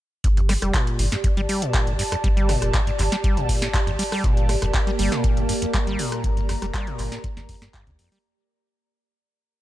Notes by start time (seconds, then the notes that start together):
0.24 G1 G2 G4, kick, closed hi-hat
0.37 F2, closed hi-hat
0.49 G3, cross-stick, snare, open hi-hat
0.62 F1 G3, cross-stick, closed hi-hat
0.74 A#2, kick, clap, closed hi-hat
0.82 D5
0.87 closed hi-hat
0.99 G1 A2, open hi-hat
1.12 G2, snare, closed hi-hat
1.24 F2, kick, closed hi-hat
1.31 A5
1.37 G1 G3, closed hi-hat
1.49 G3, open hi-hat
1.62 A#2, closed hi-hat
1.74 kick, clap, closed hi-hat
1.87 G1 A2, closed hi-hat
1.99 G2, open hi-hat
2.12 F2, cross-stick, closed hi-hat
2.24 G1 G3, kick, closed hi-hat
2.37 G3, closed hi-hat
2.49 A#2, cross-stick, snare, open hi-hat
2.62 F1, cross-stick, closed hi-hat
2.74 A2, kick, clap, closed hi-hat
2.87 G2, closed hi-hat
2.99 G1 F2, clap, open hi-hat
3.12 G3, snare, closed hi-hat
3.24 G3, kick, closed hi-hat
3.37 G1 A#2, closed hi-hat
3.49 kick, open hi-hat
3.62 A2, snare, closed hi-hat
3.74 G2, kick, clap, closed hi-hat
3.87 G1 F2, closed hi-hat
3.99 G3, open hi-hat
4.12 G3, cross-stick, open hi-hat
4.24 G1 A#2 A#3 A#4, kick, closed hi-hat
4.37 closed hi-hat
4.49 A2, cross-stick, snare, open hi-hat
4.62 F1 G2, cross-stick, closed hi-hat
4.74 F2, kick, clap, closed hi-hat
4.87 G3, closed hi-hat
4.99 G1 G3, open hi-hat
5.12 A#2, snare, closed hi-hat
5.24 kick, closed hi-hat
5.37 G1 A2, closed hi-hat
5.49 G2, open hi-hat
5.62 F2 A#5, closed hi-hat
5.74 G3, kick, clap, closed hi-hat
5.87 G1 G3, closed hi-hat
5.99 A#2, open hi-hat
6.12 cross-stick, closed hi-hat
6.24 G1 A2, kick, closed hi-hat
6.37 G2, closed hi-hat
6.49 F2, cross-stick, snare, open hi-hat
6.62 F1 G3, cross-stick, closed hi-hat
6.74 G3, kick, clap, closed hi-hat
6.87 A#2, closed hi-hat
6.99 G1, clap, open hi-hat
7.12 A2, snare, closed hi-hat
7.24 G2, kick, closed hi-hat
7.37 G1 F2, snare, closed hi-hat
7.49 F2, kick, open hi-hat
7.62 G2, snare, closed hi-hat
7.74 G2, kick, clap, closed hi-hat
7.87 D2 C3, closed hi-hat
7.99 F2, open hi-hat
8.12 G3, open hi-hat